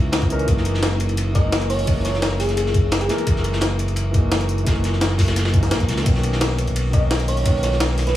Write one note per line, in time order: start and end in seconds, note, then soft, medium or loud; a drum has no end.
0.00 0.47 C#2 medium
0.00 0.29 E3 medium
0.00 0.30 B3 medium
0.00 0.31 C#4 medium
0.00 0.31 D#4 medium
0.00 0.50 F#4 medium
0.12 snare loud
0.12 closed hi-hat medium
0.12 ride medium
0.22 kick medium
0.22 closed hi-hat soft
0.29 0.40 E3 medium
0.29 0.40 B3 medium
0.29 0.41 C#4 medium
0.29 0.41 D#4 medium
0.29 0.42 A#4 loud
0.29 closed hi-hat medium
0.39 closed hi-hat soft
0.45 1.08 F#1 loud
0.45 1.31 E3 medium
0.45 1.32 G#3 medium
0.45 1.33 A#3 medium
0.45 kick loud
0.45 closed hi-hat medium
0.45 ride medium
0.51 1.35 F#4 medium
0.57 snare soft
0.65 closed hi-hat medium
0.65 ride medium
0.74 snare medium
0.83 snare loud
0.83 closed hi-hat medium
0.83 ride medium
1.00 closed hi-hat medium
1.00 ride medium
1.09 1.86 F#1 medium
1.09 closed hi-hat soft
1.09 ride soft
1.17 closed hi-hat medium
1.17 ride medium
1.32 1.83 E3 medium
1.32 1.85 G#3 medium
1.32 1.86 A#3 medium
1.32 1.56 D#5 medium
1.32 kick loud
1.32 closed hi-hat medium
1.32 ride medium
1.37 1.86 D#4 medium
1.37 1.87 F#4 medium
1.52 snare loud
1.52 closed hi-hat medium
1.52 ride loud
1.61 closed hi-hat soft
1.61 ride soft
1.70 2.03 C#5 medium
1.70 closed hi-hat medium
1.70 open hi-hat medium
1.79 closed hi-hat soft
1.85 2.47 F#1 loud
1.85 2.71 E3 medium
1.85 2.72 G#3 medium
1.85 2.73 A#3 medium
1.85 kick loud
1.85 closed hi-hat medium
1.85 ride medium
1.89 2.74 D#4 medium
1.89 2.74 F#4 medium
2.05 2.26 C#5 medium
2.05 snare soft
2.05 closed hi-hat medium
2.05 ride medium
2.14 snare soft
2.22 snare loud
2.22 closed hi-hat medium
2.22 ride medium
2.39 2.56 G#4 medium
2.39 snare soft
2.39 open hi-hat medium
2.39 ride medium
2.49 2.82 F#1 medium
2.49 snare soft
2.49 closed hi-hat soft
2.57 2.78 G#4 medium
2.57 closed hi-hat medium
2.57 ride loud
2.66 snare soft
2.74 kick loud
2.74 closed hi-hat medium
2.74 ride medium
2.84 3.08 F#1 loud
2.91 snare loud
2.91 closed hi-hat medium
2.91 ride medium
3.01 3.50 G#4 medium
3.01 closed hi-hat soft
3.08 3.19 E3 medium
3.08 3.20 G#3 medium
3.08 3.20 A#3 medium
3.08 3.20 D#4 medium
3.08 3.21 A#4 loud
3.08 snare medium
3.08 closed hi-hat medium
3.08 ride medium
3.18 closed hi-hat soft
3.18 ride soft
3.24 3.87 F#1 loud
3.24 4.10 E3 medium
3.24 4.11 G#3 medium
3.24 4.12 A#3 medium
3.24 kick loud
3.24 closed hi-hat loud
3.24 ride medium
3.29 4.13 D#4 medium
3.29 4.14 F#4 medium
3.36 snare soft
3.44 closed hi-hat medium
3.44 ride medium
3.53 snare medium
3.61 snare loud
3.61 closed hi-hat medium
3.61 ride medium
3.79 closed hi-hat medium
3.79 ride medium
3.88 4.65 F#1 medium
3.88 closed hi-hat soft
3.88 ride soft
3.96 closed hi-hat medium
3.96 ride medium
4.11 4.62 E3 medium
4.11 4.63 G#3 medium
4.11 4.65 A#3 medium
4.11 kick loud
4.11 closed hi-hat medium
4.11 ride medium
4.16 4.65 D#4 medium
4.16 4.66 F#4 medium
4.31 snare loud
4.31 closed hi-hat medium
4.31 ride medium
4.40 closed hi-hat soft
4.40 ride soft
4.49 closed hi-hat medium
4.58 closed hi-hat soft
4.63 5.27 F#1 loud
4.63 5.49 E3 medium
4.63 5.51 G#3 medium
4.63 5.52 A#3 medium
4.63 kick loud
4.63 snare loud
4.63 closed hi-hat medium
4.63 ride medium
4.68 5.53 D#4 medium
4.68 5.53 F#4 medium
4.84 snare soft
4.84 closed hi-hat medium
4.84 ride medium
4.93 snare soft
5.01 snare loud
5.01 closed hi-hat loud
5.01 ride medium
5.18 kick medium
5.18 snare loud
5.18 open hi-hat medium
5.18 ride medium
5.28 5.73 F#1 medium
5.28 snare loud
5.28 closed hi-hat soft
5.28 ride medium
5.36 snare loud
5.36 closed hi-hat loud
5.36 ride medium
5.45 snare loud
5.45 ride medium
5.51 6.03 E3 medium
5.51 6.03 G#3 medium
5.51 6.03 A#3 medium
5.51 kick loud
5.51 closed hi-hat medium
5.51 ride medium
5.56 6.05 D#4 medium
5.56 6.06 F#4 medium
5.63 snare soft
5.63 closed hi-hat soft
5.71 5.90 A#1 medium
5.71 snare loud
5.71 closed hi-hat loud
5.71 ride medium
5.80 kick medium
5.80 closed hi-hat soft
5.89 6.04 C#2 loud
5.89 snare medium
5.89 closed hi-hat medium
5.89 ride medium
5.97 snare loud
5.97 closed hi-hat soft
5.97 ride medium
6.03 6.66 B1 medium
6.03 6.89 D#3 medium
6.03 6.91 A#3 medium
6.03 6.91 B3 medium
6.03 kick loud
6.03 closed hi-hat loud
6.03 crash medium
6.03 ride medium
6.03 ride bell medium
6.08 6.92 C#4 medium
6.08 6.93 F#4 medium
6.15 snare soft
6.23 closed hi-hat medium
6.23 ride medium
6.32 snare medium
6.41 snare loud
6.41 closed hi-hat loud
6.41 ride loud
6.41 ride bell medium
6.58 closed hi-hat medium
6.58 ride medium
6.67 7.44 B1 medium
6.67 closed hi-hat soft
6.67 ride soft
6.76 closed hi-hat loud
6.76 ride medium
6.76 ride bell medium
6.91 7.41 D#3 medium
6.91 7.43 A#3 medium
6.91 7.44 B3 medium
6.91 7.15 D#5 medium
6.91 kick loud
6.91 closed hi-hat medium
6.91 ride medium
6.95 7.45 C#4 medium
6.95 7.45 F#4 medium
7.10 snare loud
7.10 closed hi-hat loud
7.10 ride medium
7.10 ride bell medium
7.19 closed hi-hat soft
7.19 ride soft
7.28 7.62 C#5 medium
7.28 closed hi-hat medium
7.28 open hi-hat medium
7.37 closed hi-hat soft
7.43 8.06 B1 loud
7.43 8.17 D#3 medium
7.43 8.17 A#3 medium
7.43 8.17 B3 medium
7.43 kick loud
7.43 closed hi-hat loud
7.43 ride medium
7.43 ride bell medium
7.48 8.17 C#4 medium
7.48 8.17 F#4 medium
7.63 7.84 C#5 loud
7.63 snare soft
7.63 closed hi-hat medium
7.63 ride medium
7.72 snare soft
7.80 snare loud
7.80 closed hi-hat loud
7.80 ride medium
7.80 ride bell medium
7.98 snare soft
7.98 open hi-hat medium
7.98 ride medium
8.07 8.17 B1 medium
8.07 8.17 B4 medium
8.07 snare soft
8.07 closed hi-hat soft